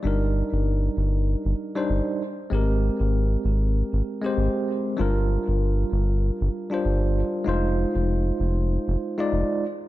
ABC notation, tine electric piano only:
X:1
M:4/4
L:1/16
Q:"Swing 16ths" 1/4=97
K:Fdor
V:1 name="Tine electric piano"
[G,DEB]8- [G,DEB]3 [G,DEc]3 z2 | [A,CGB]8- [A,CGB]3 [A,CGc]4- [A,CGc] | [G,DFB]8- [G,DFB]3 [G,DFc]4- [G,DFc] | [A,EFc]8- [A,EFc]3 [A,EFd]3 z2 |]